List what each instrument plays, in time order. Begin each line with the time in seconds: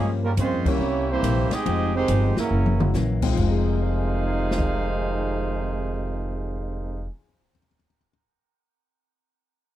Already playing: hollow-body jazz guitar G2 F3 A#3 C#4, upright bass G2, grand piano G3 A#3 C#4 F4 G4
0.22 trombone section C#3 F3 A#3, trumpet section G3 C#4 F4 A#4
0.37 upright bass F2, hollow-body jazz guitar G2 F3 A#3 C#4, trumpet section G#3 C#4 F4 C5, trombone section C4, kick, hi-hat pedal, ride
0.65 trombone section G3 A#3 C#4, grand piano G3 A#3 C#4 E4 A#4, trumpet section A#3 E4 G4 C#5, muted upright bass stroke, kick, crash
0.79 upright bass C2, hollow-body jazz guitar C3 G3 A#3
0.83 hollow-body jazz guitar E4
1.10 trombone section E3 G3 C4, trumpet section A#3 E4 G4 C5
1.22 upright bass A#1, hollow-body jazz guitar C3 G3 A#3 E4, kick, hi-hat pedal, ride
1.50 trombone section G#3 C4 D#4, trumpet section C4 G4 G#4 D#5, muted upright bass stroke, snare, ride
1.65 upright bass F1, hollow-body jazz guitar F3 G#3 D#4 G4, grand piano G#3 C4 D#4 F4 G4, kick, ride
1.93 trombone section D#3 G#3 C4, trumpet section G#3 D#4 G4 C5
2.08 upright bass G1, hollow-body jazz guitar F3 G#3 D#4 G4, kick, hi-hat pedal, ride
2.37 trombone section C#3 E3 A#3, trumpet section F#3 C#4 E4 A#4, muted upright bass stroke, snare
2.51 upright bass F#1, hollow-body jazz guitar F#2 E3 A#3 C#4
2.66 high tom
2.79 grand piano G#3 A#3 C#4 E4 F#4, mid tom
2.94 upright bass A#1, hollow-body jazz guitar F#2 E3 A#3 C#4, snare, hi-hat pedal
3.22 grand piano G#3 C4 D#4 F4 G5, kick, crash
3.27 grand piano F2
3.32 trombone section F2 C3 D#3 G#3, grand piano F3, hollow-body jazz guitar F3
3.37 upright bass F1, hollow-body jazz guitar G#3, trumpet section D#4 G#4 C5 F5, grand piano D#4, kick, crash
3.47 hollow-body jazz guitar D#4
3.51 grand piano G#4
3.82 grand piano C5
3.89 grand piano F5
3.98 grand piano G#5
4.07 grand piano C6
4.17 grand piano F6
4.28 grand piano G#6
4.39 grand piano C7
4.51 snare
4.58 kick